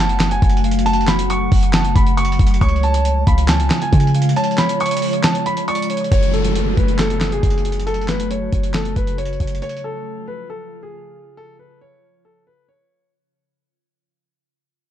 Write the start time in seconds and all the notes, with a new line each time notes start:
Already playing: F#1 C#3 F#3 A3 F#4
0.00 F#5 A5
0.09 closed hi-hat
0.20 snare, clap, closed hi-hat
0.31 G#5, closed hi-hat
0.42 F#1, kick, closed hi-hat
0.50 closed hi-hat
0.57 closed hi-hat
0.64 F5, closed hi-hat
0.71 closed hi-hat
0.79 closed hi-hat
0.86 F#5 A5, closed hi-hat
0.93 closed hi-hat
1.01 closed hi-hat
1.07 B5, snare, clap, closed hi-hat
1.19 closed hi-hat
1.30 C#6, closed hi-hat
1.52 F#1, kick, open hi-hat
1.63 closed hi-hat
1.73 A5, snare, clap, closed hi-hat
1.85 closed hi-hat
1.95 F#1 B5, kick, closed hi-hat
2.07 closed hi-hat
2.17 C#6, closed hi-hat
2.25 closed hi-hat
2.32 closed hi-hat
2.39 F#1, kick, closed hi-hat
2.47 closed hi-hat
2.54 closed hi-hat
2.61 C#2 F3 G#3 F4 C#5 C#6, kick, closed hi-hat
2.69 closed hi-hat
2.76 closed hi-hat
2.83 A5, closed hi-hat
2.94 closed hi-hat
3.05 closed hi-hat
3.27 C#2 F5 B5, kick, closed hi-hat
3.38 closed hi-hat
3.48 D2 G#5 A5, snare, clap, closed hi-hat
3.60 C#2, closed hi-hat
3.70 snare, clap, closed hi-hat
3.82 G#5, closed hi-hat
3.93 C#3, kick, closed hi-hat
4.00 closed hi-hat
4.07 closed hi-hat
4.15 F5, closed hi-hat
4.22 closed hi-hat
4.29 closed hi-hat
4.36 C#5 A5, closed hi-hat
4.44 closed hi-hat
4.51 closed hi-hat
4.58 B5, snare, clap, closed hi-hat
4.69 closed hi-hat
4.80 C#6, closed hi-hat
4.86 closed hi-hat
4.91 closed hi-hat
4.97 closed hi-hat
5.02 open hi-hat
5.13 closed hi-hat
5.23 A5, snare, clap, closed hi-hat
5.35 closed hi-hat
5.46 B5, closed hi-hat
5.57 closed hi-hat
5.68 D5 C#6, closed hi-hat
5.75 closed hi-hat
5.82 closed hi-hat
5.90 C#5, closed hi-hat
5.97 closed hi-hat
6.04 closed hi-hat
6.11 F#1 C#3 F#3 A3 F#4 C#5, kick, closed hi-hat, downlifter
6.23 closed hi-hat
6.33 A4, closed hi-hat
6.45 closed hi-hat
6.55 closed hi-hat
6.77 F#1 B4, kick, closed hi-hat
6.88 closed hi-hat
6.99 A4, snare, clap, closed hi-hat
7.10 closed hi-hat
7.20 snare, clap, closed hi-hat
7.32 G#4, closed hi-hat
7.43 F#1, kick, closed hi-hat
7.50 closed hi-hat
7.58 closed hi-hat
7.65 closed hi-hat
7.72 closed hi-hat
7.80 closed hi-hat
7.87 A4, closed hi-hat
7.94 closed hi-hat
8.01 closed hi-hat
8.08 B4, snare, clap, closed hi-hat
8.20 closed hi-hat
8.31 C#5, closed hi-hat
8.53 F#1, kick, closed hi-hat
8.63 closed hi-hat
8.74 A4, snare, clap, closed hi-hat
8.85 closed hi-hat
8.96 F#1 B4, kick, closed hi-hat
9.07 closed hi-hat
9.18 C#5, closed hi-hat
9.25 closed hi-hat
9.33 closed hi-hat
9.40 F#1, kick, closed hi-hat
9.47 closed hi-hat
9.55 closed hi-hat
9.62 F3 F4 C#5, closed hi-hat
9.69 closed hi-hat
9.77 closed hi-hat
9.84 A4
10.28 B4
10.50 A4
10.83 G#4
11.37 A4
11.59 B4
11.81 C#5
12.25 A4
12.47 B4
12.69 C#5